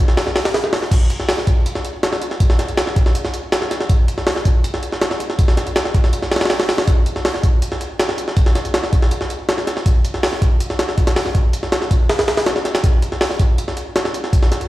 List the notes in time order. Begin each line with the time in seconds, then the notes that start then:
0.08 snare
0.17 snare, open hi-hat
0.27 snare
0.36 snare, open hi-hat
0.45 snare, open hi-hat
0.54 snare, open hi-hat
0.64 snare
0.73 snare, open hi-hat
0.83 snare
0.91 kick, closed hi-hat, crash
1.10 closed hi-hat
1.20 snare
1.29 snare, open hi-hat
1.38 snare
1.47 kick, closed hi-hat
1.66 closed hi-hat
1.75 snare
1.85 closed hi-hat
2.03 snare, closed hi-hat
2.13 snare
2.22 closed hi-hat
2.31 snare
2.40 kick, closed hi-hat
2.50 snare
2.59 snare, closed hi-hat
2.69 closed hi-hat
2.77 snare, closed hi-hat
2.87 snare
2.96 kick, closed hi-hat
3.06 snare
3.15 closed hi-hat
3.25 snare
3.34 closed hi-hat
3.52 snare, closed hi-hat
3.62 snare
3.71 snare, closed hi-hat
3.81 snare
3.90 kick, closed hi-hat
4.08 closed hi-hat
4.18 snare
4.27 snare, open hi-hat
4.36 snare
4.45 kick, closed hi-hat
4.64 closed hi-hat
4.74 snare
4.83 closed hi-hat
4.92 snare
5.01 snare, closed hi-hat
5.11 snare
5.20 closed hi-hat
5.30 snare
5.39 kick, closed hi-hat
5.48 snare
5.57 snare, closed hi-hat
5.67 closed hi-hat
5.76 snare, closed hi-hat
5.85 snare
5.94 kick, closed hi-hat
6.04 snare
6.13 closed hi-hat
6.23 snare
6.32 snare, open hi-hat
6.36 snare, open hi-hat
6.41 snare, open hi-hat
6.45 snare, open hi-hat
6.50 snare, open hi-hat
6.60 snare, open hi-hat
6.69 snare, open hi-hat
6.78 snare, open hi-hat
6.87 kick, closed hi-hat
7.06 closed hi-hat
7.16 snare
7.25 snare, open hi-hat
7.34 snare
7.43 kick, closed hi-hat
7.62 closed hi-hat
7.72 snare
7.81 closed hi-hat
8.00 snare, closed hi-hat
8.09 snare
8.18 closed hi-hat
8.28 snare
8.37 kick, closed hi-hat
8.46 snare
8.55 snare, closed hi-hat
8.65 closed hi-hat
8.74 snare, closed hi-hat
8.84 snare
8.93 kick, closed hi-hat
9.02 snare
9.11 closed hi-hat
9.21 snare
9.30 closed hi-hat
9.49 snare, closed hi-hat
9.58 snare
9.67 snare, closed hi-hat
9.77 snare
9.86 kick, closed hi-hat
10.05 closed hi-hat
10.14 snare
10.23 snare, open hi-hat
10.33 snare
10.42 kick, closed hi-hat
10.60 closed hi-hat
10.70 snare
10.79 snare, closed hi-hat
10.89 snare
10.98 kick, closed hi-hat
11.07 snare, closed hi-hat
11.16 snare, open hi-hat
11.26 snare
11.35 kick, closed hi-hat
11.53 closed hi-hat
11.63 snare
11.72 snare, closed hi-hat
11.82 snare
11.91 kick, closed hi-hat
12.09 snare, open hi-hat
12.19 snare, open hi-hat
12.28 snare, open hi-hat
12.37 snare, open hi-hat
12.46 snare, closed hi-hat
12.56 snare
12.65 snare, closed hi-hat
12.75 snare, closed hi-hat
12.84 kick, closed hi-hat
13.02 closed hi-hat
13.12 snare
13.21 snare, open hi-hat
13.31 snare
13.40 kick, closed hi-hat
13.58 closed hi-hat
13.68 snare
13.77 closed hi-hat
13.96 snare, closed hi-hat
14.05 snare
14.14 closed hi-hat
14.24 snare
14.33 kick, closed hi-hat
14.42 snare
14.52 snare, closed hi-hat
14.61 closed hi-hat